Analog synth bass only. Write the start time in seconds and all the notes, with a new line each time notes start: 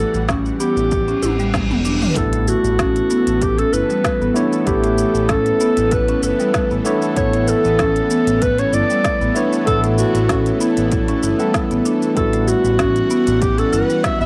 0.14 A1
0.77 A1
1.23 A1
1.71 E1
2.17 A1
2.64 A1
3.27 A1
3.73 G1
4.21 A1
4.67 A1
5.15 A1
5.77 A1
6.23 G1
6.71 A1
7.17 A1
7.65 A1
8.27 A1
8.73 G1
9.21 A1
9.67 A1
10.15 A1
10.77 A1
11.23 G1
11.71 A1
12.17 A1
12.65 A1
13.27 A1
13.73 G1
14.21 A1